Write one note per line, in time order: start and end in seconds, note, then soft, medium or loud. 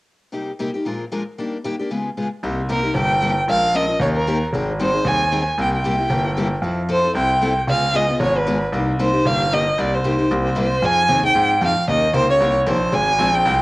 0.32 0.50 C3 medium
0.32 0.50 G3 soft
0.32 0.51 A#3 medium
0.32 0.51 D#4 medium
0.32 0.51 G4 medium
0.59 0.69 C3 medium
0.59 0.69 G3 medium
0.59 0.69 A#3 medium
0.59 0.69 D#4 medium
0.59 0.70 G4 medium
0.74 0.86 A#3 soft
0.74 0.85 D#4 soft
0.74 0.85 G4 medium
0.85 1.03 A#2 medium
0.85 1.03 F3 medium
0.85 1.04 G#3 medium
0.85 1.04 D4 medium
0.85 1.04 F4 medium
0.85 1.04 A#4 medium
1.12 1.21 A#2 medium
1.12 1.22 F3 medium
1.12 1.22 G#3 medium
1.12 1.22 D4 medium
1.12 1.22 F4 medium
1.12 1.22 A#4 medium
1.38 1.56 D#3 medium
1.38 1.56 G3 medium
1.38 1.56 A#3 medium
1.38 1.56 D4 medium
1.38 1.57 G4 medium
1.64 1.74 D#3 medium
1.64 1.74 G3 medium
1.64 1.75 A#3 medium
1.64 1.75 D4 medium
1.64 1.75 G4 medium
1.79 1.91 A#3 soft
1.79 1.91 D4 soft
1.79 1.90 G4 medium
1.90 2.09 C#3 medium
1.90 2.09 G#3 medium
1.90 2.09 B3 medium
1.90 2.09 F4 medium
1.90 2.09 G#4 medium
2.17 2.27 C#3 medium
2.17 2.27 G#3 medium
2.17 2.27 B3 medium
2.17 2.27 F4 medium
2.17 2.27 G#4 medium
2.43 2.85 C2 medium
2.43 2.61 C3 medium
2.43 2.61 G3 medium
2.43 2.61 A#3 medium
2.43 2.61 D#4 medium
2.43 2.62 G4 medium
2.69 2.79 C3 medium
2.69 2.79 G3 medium
2.69 2.79 A#3 medium
2.69 2.79 D#4 medium
2.69 2.80 G4 medium
2.69 2.95 A#4 medium
2.83 2.96 A#3 soft
2.83 2.95 D#4 soft
2.83 2.95 G4 medium
2.95 3.37 G1 medium
2.95 3.14 C3 medium
2.95 3.14 G3 medium
2.95 3.14 A#3 medium
2.95 3.15 D#4 medium
2.95 3.14 G4 medium
2.95 3.34 G5 loud
3.22 3.32 C3 medium
3.22 3.32 G3 medium
3.22 3.32 A#3 medium
3.22 3.32 D#4 medium
3.22 3.33 G4 medium
3.47 3.90 A#1 medium
3.47 3.66 F3 medium
3.47 3.66 G#3 medium
3.47 3.67 C#4 medium
3.47 3.67 F4 medium
3.47 3.67 A#4 medium
3.47 3.77 F5 loud
3.74 3.84 F3 medium
3.74 3.84 G#3 medium
3.74 3.85 C#4 medium
3.74 3.84 F4 loud
3.74 3.85 A#4 loud
3.74 4.01 D#5 loud
3.88 4.00 C#4 soft
3.88 4.00 F4 medium
3.88 4.00 A#4 medium
4.00 4.42 D#2 medium
4.00 4.19 D#3 medium
4.00 4.19 A#3 medium
4.00 4.19 C#4 medium
4.00 4.19 G4 medium
4.00 4.19 A#4 medium
4.00 4.08 C#5 medium
4.16 4.40 A#4 medium
4.27 4.37 D#3 medium
4.27 4.37 A#3 medium
4.27 4.38 C#4 medium
4.27 4.38 G4 medium
4.27 4.38 A#4 loud
4.53 4.95 G#1 medium
4.53 4.71 D#3 medium
4.53 4.72 G3 medium
4.53 4.72 C4 medium
4.53 4.72 D#4 medium
4.53 4.72 G#4 medium
4.80 4.90 D#3 medium
4.80 4.90 G3 medium
4.80 4.90 C4 medium
4.80 4.90 D#4 medium
4.80 4.90 G#4 medium
4.80 5.08 C5 medium
4.94 5.04 C4 soft
4.94 5.05 D#4 soft
4.94 5.05 G#4 medium
5.05 5.47 D#2 medium
5.05 5.23 D#3 medium
5.05 5.23 G3 medium
5.05 5.24 C4 medium
5.05 5.24 D#4 medium
5.05 5.24 G#4 medium
5.05 5.47 G#5 medium
5.32 5.42 D#3 medium
5.32 5.42 G3 medium
5.32 5.42 C4 medium
5.32 5.42 D#4 medium
5.32 5.42 G#4 medium
5.58 6.00 C2 medium
5.58 5.76 C3 medium
5.58 5.76 G3 medium
5.58 5.76 A#3 medium
5.58 5.77 E4 medium
5.58 5.77 G4 medium
5.58 5.73 G5 medium
5.75 6.49 G5 medium
5.84 5.94 C3 medium
5.84 5.95 G3 medium
5.84 5.95 A#3 medium
5.84 5.95 E4 medium
5.84 5.95 G4 medium
5.98 6.09 A#3 soft
5.98 6.09 E4 medium
5.98 6.10 G4 medium
6.10 6.52 G1 medium
6.10 6.28 C3 medium
6.10 6.28 G3 medium
6.10 6.29 A#3 medium
6.10 6.28 E4 medium
6.10 6.29 G4 medium
6.37 6.47 C3 medium
6.37 6.47 G3 medium
6.37 6.47 A#3 medium
6.37 6.47 E4 medium
6.37 6.47 G4 medium
6.62 7.04 F2 medium
6.62 6.81 F3 medium
6.62 6.81 C4 medium
6.62 6.81 E4 medium
6.62 6.82 A4 medium
6.89 6.99 F3 medium
6.89 6.99 C4 medium
6.89 6.99 E4 medium
6.89 6.99 A4 medium
6.89 7.15 C5 medium
7.04 7.14 C4 soft
7.04 7.15 E4 medium
7.04 7.15 A4 medium
7.15 7.57 C2 medium
7.15 7.33 F3 medium
7.15 7.34 C4 medium
7.15 7.34 E4 medium
7.15 7.34 A4 medium
7.15 7.54 G5 medium
7.42 7.52 F3 medium
7.42 7.52 C4 medium
7.42 7.52 E4 medium
7.42 7.52 A4 medium
7.67 8.10 C#2 medium
7.67 7.86 C#3 medium
7.67 7.86 G#3 medium
7.67 7.86 B3 medium
7.67 7.86 F4 medium
7.67 7.87 G#4 medium
7.67 7.97 F5 loud
7.94 8.04 C#3 medium
7.94 8.04 G#3 medium
7.94 8.04 B3 medium
7.94 8.04 F4 medium
7.94 8.04 G#4 medium
7.94 8.21 D#5 medium
8.08 8.20 B3 soft
8.08 8.20 F4 medium
8.08 8.20 G#4 medium
8.20 8.62 G#1 medium
8.20 8.38 C#3 medium
8.20 8.38 G#3 medium
8.20 8.39 B3 medium
8.20 8.39 F4 medium
8.20 8.39 G#4 medium
8.20 8.39 C#5 medium
8.37 8.62 B4 medium
8.47 8.57 C#3 medium
8.47 8.57 G#3 medium
8.47 8.57 B3 medium
8.47 8.57 F4 loud
8.47 8.57 G#4 medium
8.72 9.15 C2 medium
8.72 8.91 C3 medium
8.72 8.91 G3 medium
8.72 8.91 A#3 medium
8.72 8.91 D#4 medium
8.72 8.92 G4 medium
8.99 9.09 C3 medium
8.99 9.09 G3 medium
8.99 9.09 A#3 medium
8.99 9.09 D#4 medium
8.99 9.10 G4 loud
8.99 9.28 C5 medium
9.13 9.26 A#3 soft
9.13 9.25 D#4 medium
9.13 9.25 G4 medium
9.25 9.67 G1 medium
9.25 9.44 C3 medium
9.25 9.44 G3 medium
9.25 9.44 A#3 medium
9.25 9.44 D#4 medium
9.25 9.44 G4 medium
9.25 9.55 F5 loud
9.52 9.62 C3 medium
9.52 9.62 G3 medium
9.52 9.62 A#3 medium
9.52 9.62 D#4 medium
9.52 9.62 G4 medium
9.52 9.81 D#5 medium
9.77 10.20 C2 medium
9.77 9.96 C3 medium
9.77 9.96 G3 medium
9.77 9.96 A#3 medium
9.77 9.96 D#4 medium
9.77 9.96 G4 medium
9.77 9.95 D5 medium
9.94 10.57 C5 medium
10.04 10.14 C3 medium
10.04 10.14 G3 medium
10.04 10.14 A#3 medium
10.04 10.14 D#4 medium
10.04 10.15 G4 medium
10.18 10.30 A#3 medium
10.18 10.30 D#4 medium
10.18 10.30 G4 medium
10.30 10.73 C2 medium
10.30 10.48 C3 medium
10.30 10.49 G3 medium
10.30 10.49 A#3 medium
10.30 10.49 E4 medium
10.30 10.49 G4 medium
10.55 10.66 C3 medium
10.55 10.66 G3 medium
10.55 10.66 A#3 medium
10.55 10.66 E4 medium
10.55 10.67 G4 medium
10.55 10.86 C5 medium
10.82 11.08 F2 medium
10.82 11.01 F3 medium
10.82 11.01 C4 medium
10.82 11.01 D#4 medium
10.82 11.01 G#4 medium
10.82 11.25 G#5 loud
11.09 11.22 D#2 medium
11.09 11.19 F3 medium
11.09 11.19 C4 medium
11.09 11.19 D#4 loud
11.09 11.20 G#4 medium
11.23 11.29 D#2 soft
11.23 11.34 C4 medium
11.23 11.34 D#4 medium
11.23 11.34 G#4 medium
11.23 11.49 G5 loud
11.35 11.61 G#2 medium
11.35 11.53 F3 medium
11.35 11.54 C4 medium
11.35 11.54 D#4 medium
11.35 11.54 G#4 medium
11.61 11.74 F2 medium
11.61 11.71 F3 medium
11.61 11.72 C4 medium
11.61 11.72 D#4 medium
11.61 11.72 G#4 loud
11.61 11.88 F5 medium
11.76 11.82 F2 soft
11.88 12.14 D#2 medium
11.88 12.06 D#3 medium
11.88 12.06 A#3 medium
11.88 12.06 C#4 medium
11.88 12.07 G4 medium
11.88 12.07 A#4 medium
11.88 12.14 D#5 medium
12.13 12.39 C#2 medium
12.13 12.24 D#3 medium
12.13 12.24 A#3 medium
12.13 12.24 C#4 medium
12.13 12.25 G4 medium
12.13 12.25 A#4 medium
12.13 12.29 C5 loud
12.28 12.40 C#4 medium
12.28 12.40 G4 medium
12.28 12.40 A#4 medium
12.28 12.54 C#5 loud
12.40 12.66 C2 medium
12.40 12.58 D#3 medium
12.40 12.59 A#3 medium
12.40 12.59 C#4 medium
12.40 12.59 G4 medium
12.40 12.59 A#4 medium
12.66 12.92 A#1 medium
12.66 12.77 D#3 medium
12.66 12.77 A#3 medium
12.66 12.77 C#4 medium
12.66 12.77 G4 medium
12.66 12.77 A#4 loud
12.66 12.95 C5 medium
12.92 13.19 G#1 medium
12.92 13.11 G#3 medium
12.92 13.11 C4 medium
12.92 13.11 F4 medium
12.92 13.11 G#4 medium
12.92 13.36 G#5 loud
13.19 13.45 A#1 medium
13.19 13.29 G#3 medium
13.19 13.29 C4 medium
13.19 13.30 F4 medium
13.19 13.30 G#4 loud
13.33 13.44 C4 soft
13.33 13.44 F4 medium
13.33 13.45 G#4 medium
13.33 13.61 G5 loud
13.45 13.62 C2 loud
13.45 13.62 G#3 medium
13.45 13.62 C4 medium
13.45 13.62 F4 medium
13.45 13.62 G#4 medium